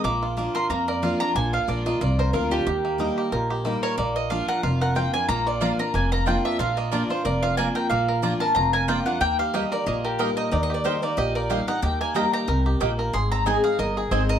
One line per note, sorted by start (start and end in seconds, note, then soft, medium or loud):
0.04 0.47 A#1 medium
0.04 0.67 A#2 medium
0.04 0.37 A#3 medium
0.04 0.52 D6 medium
0.22 1.03 F4 medium
0.37 0.54 F3 medium
0.37 0.70 A#3 medium
0.37 0.55 A#3 medium
0.37 0.55 D4 medium
0.37 0.54 F4 medium
0.55 0.70 D4 soft
0.55 0.69 F4 medium
0.55 0.88 A#4 medium
0.55 0.69 C6 loud
0.70 1.12 F2 medium
0.70 1.33 F2 medium
0.70 1.86 A#3 medium
0.70 0.87 A#5 medium
0.88 2.19 A#4 medium
0.88 1.02 D5 medium
1.02 1.20 F3 medium
1.02 1.20 A#3 medium
1.02 1.21 D4 medium
1.02 1.50 F4 medium
1.02 1.19 F4 medium
1.02 1.20 F5 medium
1.20 1.34 D4 medium
1.20 1.36 D4 soft
1.20 1.35 F4 medium
1.20 1.35 A#5 loud
1.35 1.57 A#1 medium
1.35 1.98 A#2 medium
1.35 1.67 D4 medium
1.35 1.53 G#5 medium
1.53 1.98 F4 medium
1.53 1.68 F5 medium
1.68 1.96 A#1 medium
1.68 1.85 F3 medium
1.68 1.86 A#3 medium
1.68 2.15 D4 medium
1.68 1.86 D4 medium
1.68 1.85 F4 medium
1.68 1.86 D5 medium
1.86 2.84 A#3 medium
1.86 2.01 D4 soft
1.86 2.01 F4 medium
1.86 2.01 D#5 medium
2.01 2.29 C2 medium
2.01 2.64 F2 medium
2.01 2.33 F4 medium
2.01 2.19 D5 medium
2.19 3.32 A#4 medium
2.19 2.33 C5 medium
2.33 2.61 D2 medium
2.33 2.51 F3 medium
2.33 2.51 A#3 medium
2.33 2.52 D4 medium
2.33 2.66 F4 medium
2.33 2.50 F4 medium
2.33 2.51 A#4 medium
2.51 2.67 D4 medium
2.51 2.67 D4 soft
2.51 2.66 F4 medium
2.51 3.28 G4 medium
2.67 3.09 D#2 medium
2.67 3.29 D#3 medium
2.67 3.14 G4 medium
2.85 3.65 A#3 medium
2.98 3.30 G3 medium
2.98 3.31 A#3 medium
2.98 3.31 D#4 medium
2.98 3.47 D#4 medium
2.98 3.31 G4 medium
3.18 3.49 G4 medium
3.32 3.75 A#1 medium
3.32 3.95 A#2 medium
3.32 3.83 A#4 medium
3.50 3.95 G4 medium
3.65 3.96 G3 medium
3.65 3.98 A#3 medium
3.65 3.96 A#3 medium
3.65 3.97 D#4 medium
3.65 3.97 G4 medium
3.83 4.48 A#4 medium
3.83 3.97 C#5 loud
3.98 4.40 A#1 medium
3.98 4.60 A#2 medium
3.98 5.14 A#3 medium
3.98 4.15 D5 medium
4.16 4.30 D#5 medium
4.30 4.62 F3 medium
4.30 4.62 A#3 medium
4.30 5.71 D4 medium
4.30 4.62 D4 medium
4.30 4.63 F4 medium
4.30 4.48 F5 medium
4.48 4.81 A#4 medium
4.48 4.63 F#5 loud
4.63 5.06 F1 medium
4.63 5.26 F2 medium
4.63 4.96 F4 medium
4.63 4.81 F5 medium
4.81 5.79 A#4 medium
4.81 4.96 F#5 medium
4.95 5.13 F3 medium
4.95 5.13 A#3 medium
4.95 5.13 D4 medium
4.95 5.46 F4 medium
4.95 5.12 F4 medium
4.95 5.13 G5 medium
5.14 5.28 A#3 medium
5.14 5.29 D4 soft
5.14 5.28 F4 medium
5.14 5.28 G#5 loud
5.29 5.71 A#1 medium
5.29 5.92 A#2 medium
5.29 5.61 A#3 medium
5.29 5.46 A#5 loud
5.47 6.27 F4 medium
5.47 5.61 D5 medium
5.61 5.78 F3 medium
5.61 5.71 A#3 medium
5.61 5.94 A#3 medium
5.61 5.79 A#3 medium
5.61 5.79 D4 medium
5.61 5.71 F4 medium
5.61 5.78 F4 medium
5.61 5.71 D5 loud
5.61 5.79 F5 medium
5.61 5.71 A#5 loud
5.79 5.94 D4 soft
5.79 5.93 F4 soft
5.79 6.12 A#4 medium
5.79 5.94 A#5 loud
5.94 6.36 F1 medium
5.94 6.56 F2 medium
5.94 6.77 A#3 medium
5.94 6.12 G#5 medium
6.12 7.25 A#4 medium
6.12 6.26 A#5 loud
6.26 6.58 F3 medium
6.26 6.36 A#3 medium
6.26 6.58 A#3 medium
6.26 6.59 D4 medium
6.26 6.36 F4 medium
6.26 6.60 F4 medium
6.26 6.59 F4 medium
6.26 6.37 D5 medium
6.26 6.44 G5 medium
6.26 6.37 A#5 medium
6.45 6.92 D4 medium
6.45 6.59 E5 medium
6.59 7.02 A#1 medium
6.59 7.22 A#2 medium
6.59 7.10 F4 medium
6.59 6.77 F5 loud
6.77 7.57 A#3 medium
6.77 6.92 D#5 medium
6.92 7.09 F3 medium
6.92 7.02 A#3 medium
6.92 7.10 A#3 medium
6.92 7.39 D4 medium
6.92 7.10 D4 medium
6.92 7.02 F4 medium
6.92 7.08 F4 medium
6.92 7.10 D5 medium
6.92 7.02 D5 loud
6.92 7.02 A#5 medium
7.09 7.25 D4 soft
7.09 7.24 F4 soft
7.09 7.42 F4 medium
7.09 7.24 C5 medium
7.25 7.67 F1 medium
7.25 7.87 F2 medium
7.25 7.75 A#4 medium
7.25 7.42 D5 medium
7.43 7.88 F4 medium
7.43 7.57 F5 medium
7.57 7.89 F3 medium
7.57 7.67 A#3 medium
7.57 7.90 A#3 medium
7.57 7.89 A#3 medium
7.57 7.90 D4 medium
7.57 7.67 F4 medium
7.57 7.90 F4 medium
7.57 7.68 D5 medium
7.57 7.75 G#5 loud
7.57 7.68 A#5 medium
7.75 8.08 A#4 medium
7.75 7.89 G5 medium
7.90 8.33 A#1 medium
7.90 8.53 A#2 medium
7.90 9.07 A#3 medium
7.90 8.20 F5 medium
8.08 8.41 A#4 medium
8.22 8.40 F3 medium
8.22 8.33 A#3 medium
8.22 8.40 A#3 medium
8.22 8.70 D4 medium
8.22 8.41 D4 medium
8.22 8.33 F4 medium
8.22 8.39 F4 medium
8.22 8.33 D5 medium
8.22 8.33 A#5 loud
8.40 8.56 D4 soft
8.40 8.55 F4 medium
8.40 8.74 A#4 medium
8.40 8.54 A5 medium
8.55 8.98 F1 medium
8.55 9.18 F2 medium
8.55 8.88 F4 medium
8.55 8.73 A#5 medium
8.73 9.71 A#4 medium
8.73 8.88 G#5 medium
8.88 9.05 F3 medium
8.88 8.98 A#3 medium
8.88 9.06 A#3 medium
8.88 9.06 D4 medium
8.88 8.98 F4 medium
8.88 9.21 F4 medium
8.88 9.04 F4 medium
8.88 8.98 D5 medium
8.88 9.05 G5 medium
8.88 8.99 A#5 medium
9.05 9.21 A#3 medium
9.05 9.21 D4 soft
9.05 9.20 F4 medium
9.05 9.20 F#5 medium
9.21 9.63 D#2 medium
9.21 9.83 D#3 medium
9.21 9.54 A#3 medium
9.21 9.38 G5 loud
9.39 10.19 G4 medium
9.39 9.53 F5 medium
9.54 9.71 G3 medium
9.54 9.63 A#3 medium
9.54 9.86 A#3 medium
9.54 9.71 A#3 medium
9.54 9.71 D#4 medium
9.54 9.64 G4 medium
9.54 9.70 G4 medium
9.54 9.64 D#5 medium
9.54 9.72 D#5 medium
9.54 9.64 G5 loud
9.72 9.87 D#4 soft
9.72 9.86 G4 medium
9.72 10.04 A#4 medium
9.72 9.86 D5 medium
9.86 10.29 A#1 medium
9.86 10.49 A#2 medium
9.86 11.03 A#3 medium
9.86 10.04 D#5 medium
10.05 10.19 G4 medium
10.05 11.35 A#4 medium
10.19 10.50 G3 medium
10.19 10.29 A#3 medium
10.19 10.50 A#3 medium
10.19 10.51 D#4 medium
10.19 10.70 G4 medium
10.19 10.29 G4 medium
10.19 10.51 G4 medium
10.19 10.36 A#4 medium
10.19 10.29 D#5 medium
10.19 10.29 G5 medium
10.37 10.52 D#4 medium
10.37 10.51 D#5 loud
10.51 10.95 D#2 medium
10.51 11.14 D#3 medium
10.51 10.85 D#4 medium
10.51 10.63 D5 medium
10.63 10.73 D#5 loud
10.70 11.17 G4 medium
10.74 10.84 D5 medium
10.84 11.01 G3 medium
10.84 10.94 A#3 medium
10.84 11.02 A#3 medium
10.84 11.02 D#4 medium
10.84 11.68 D#4 medium
10.84 10.95 G4 medium
10.84 11.01 G4 medium
10.84 11.02 C5 medium
10.84 10.95 D#5 medium
10.84 10.95 G5 medium
11.02 11.47 A#3 medium
11.02 11.17 D#4 soft
11.02 11.17 G4 soft
11.02 11.17 D5 medium
11.17 11.60 A#1 medium
11.17 11.79 A#2 medium
11.17 11.49 G4 medium
11.17 11.35 D#5 medium
11.35 11.80 A#4 medium
11.35 11.50 D5 medium
11.50 11.67 G3 medium
11.50 11.60 A#3 medium
11.50 11.68 A#3 medium
11.50 11.68 D#4 medium
11.50 11.60 G4 medium
11.50 11.82 G4 medium
11.50 11.66 G4 medium
11.50 11.60 D#5 medium
11.50 11.68 F5 medium
11.50 11.60 G5 medium
11.67 12.15 D#4 medium
11.67 11.83 D#4 soft
11.67 11.82 G4 medium
11.67 11.82 F#5 loud
11.82 12.25 D#2 medium
11.82 12.45 D#3 medium
11.82 12.30 G4 medium
11.82 12.00 G5 medium
12.01 12.45 A#3 medium
12.01 12.15 G#5 medium
12.14 12.46 G3 medium
12.14 12.25 A#3 medium
12.14 12.46 A#3 medium
12.14 12.47 D#4 medium
12.14 12.62 D#4 medium
12.14 12.25 G4 medium
12.14 12.47 G4 medium
12.14 12.25 D#5 medium
12.14 12.25 G5 loud
12.14 12.32 A#5 medium
12.33 12.65 G4 medium
12.33 12.64 A#5 loud
12.48 12.76 C2 medium
12.48 12.79 C3 medium
12.48 12.95 A#4 medium
12.66 13.10 G4 medium
12.80 13.09 A#1 medium
12.80 13.12 A#2 medium
12.80 12.90 A#3 medium
12.80 13.13 A#3 medium
12.80 12.91 G4 medium
12.80 12.91 D#5 loud
12.80 12.91 G5 medium
12.99 13.13 A#4 medium
13.13 13.56 G#1 medium
13.13 13.76 G#2 medium
13.13 13.60 G#4 medium
13.13 13.31 C6 medium
13.32 13.76 C4 medium
13.32 13.46 A#5 loud
13.46 13.63 G#3 medium
13.46 13.56 C4 medium
13.46 13.63 C4 medium
13.46 13.93 D#4 medium
13.46 13.64 D#4 medium
13.46 13.56 G#4 medium
13.46 13.63 G#4 medium
13.46 13.56 D#5 medium
13.46 13.63 G#5 medium
13.46 13.56 G#5 medium
13.64 13.79 D#4 soft
13.64 13.78 G#4 medium
13.64 13.96 G#4 medium
13.64 13.78 F5 medium
13.79 14.07 G1 medium
13.79 14.39 D#3 medium
13.79 14.26 A#4 medium
13.79 13.96 D#5 medium
13.97 14.39 G#4 medium
13.97 14.11 G#4 medium
14.11 14.39 G#1 medium
14.11 14.39 G#3 medium
14.11 14.21 C4 medium
14.11 14.39 C4 medium
14.11 14.39 D#4 medium
14.11 14.21 G#4 medium
14.11 14.39 G#4 medium
14.11 14.29 C5 medium
14.11 14.21 D#5 medium
14.11 14.22 G#5 medium
14.29 14.39 A#4 medium
14.29 14.39 D#5 loud